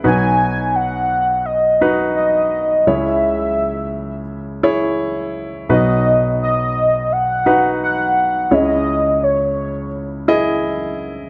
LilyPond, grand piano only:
<<
  \new Staff \with { instrumentName = "Grand piano" } { \time 4/4 \key b \major \tempo 4 = 85 <dis' fis' b'>2 r8 <dis' fis' b'>4. | <e' gis' cis''>2 r8 <e' gis' cis''>4. | <dis' fis' b'>2 r8 <dis' fis' b'>4. | <e' gis' cis''>2 r8 <e' gis' dis''>4. | }
  \new Staff \with { instrumentName = "Grand piano" } { \clef bass \time 4/4 \key b \major <b,, b,>1 | <cis, cis>1 | <b,, b,>1 | <cis, cis>1 | }
>>